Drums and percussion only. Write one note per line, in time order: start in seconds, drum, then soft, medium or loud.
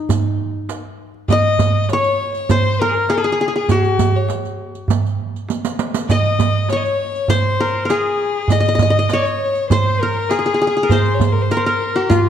0.09 riq medium
0.09 darbuka dum loud
0.69 riq medium
0.69 darbuka tek medium
1.14 darbuka ka soft
1.28 riq medium
1.28 darbuka dum medium
1.59 riq medium
1.59 darbuka dum medium
1.89 riq soft
1.89 darbuka tek medium
2.04 riq soft
2.35 riq soft
2.49 riq medium
2.49 darbuka dum medium
3.09 riq soft
3.09 darbuka tek medium
3.54 darbuka ka soft
3.69 riq medium
3.69 darbuka dum medium
3.84 riq soft
3.99 riq medium
3.99 darbuka dum medium
4.29 riq soft
4.29 darbuka tek medium
4.43 riq soft
4.43 darbuka ka soft
4.75 riq soft
4.88 riq medium
4.88 darbuka dum medium
5.06 riq soft
5.34 riq soft
5.34 darbuka ka soft
5.49 riq medium
5.49 darbuka tek medium
5.65 riq medium
5.79 riq medium
5.79 darbuka ka soft
5.94 riq medium
5.94 darbuka ka soft
6.09 riq medium
6.09 darbuka dum medium
6.25 riq soft
6.39 riq medium
6.39 darbuka dum medium
6.69 riq soft
6.69 darbuka tek medium
6.85 riq soft
7.15 riq soft
7.28 riq medium
7.28 darbuka dum medium
7.89 riq soft
7.89 darbuka tek medium
8.34 darbuka ka soft
8.48 riq medium
8.48 darbuka dum medium
8.65 riq soft
8.78 riq medium
8.78 darbuka dum medium
9.09 riq medium
9.09 darbuka tek medium
9.25 riq soft
9.55 riq soft
9.70 riq medium
9.70 darbuka dum loud
10.29 riq soft
10.29 darbuka tek medium
10.76 darbuka ka soft
10.89 riq medium
10.89 darbuka dum medium
11.06 riq soft
11.20 riq medium
11.20 darbuka dum loud
11.50 riq soft
11.50 darbuka tek medium
11.66 riq soft
11.96 riq soft
12.10 riq medium
12.10 darbuka dum loud